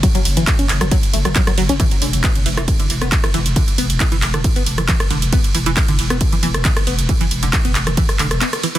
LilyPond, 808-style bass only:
\new Staff \with { instrumentName = "808-style bass" } { \clef bass \time 4/4 \key e \dorian \tempo 4 = 136 r8 fis,,16 fis,,16 r16 fis,,16 fis,,16 fis,,16 r8 fis,,16 fis,,16 r8 fis,,16 fis,,16 | r8 e,,16 e,,16 r16 e,,16 e,,16 e,,16 r8 e,,16 e,,16 r8 e,,16 e,,16 | r8 e,,16 e,,16 r16 e,,16 e,,16 e,,16 r8 e,,16 e,,16 r8 e,,16 e,,16 | r8 e,,16 e,,16 r16 e,,16 e,,16 e,,16 r8 e,,16 e,,16 r8 e,,16 e,,16 |
r8 e,,16 e,,16 r16 e,,16 e,,16 e,,16 r8 e,,16 e,,16 r4 | }